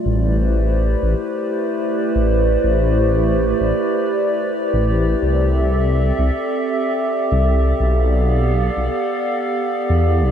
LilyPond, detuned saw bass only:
\new Staff \with { instrumentName = "Detuned saw bass" } { \clef bass \time 4/4 \key a \minor \tempo 4 = 93 a,,4. a,,16 r4. a,,8. | a,,4. a,,16 r4. a,,8. | c,4. c,16 r4. c,8. | b,,4. b,,16 r4. e,8 b,,16 | }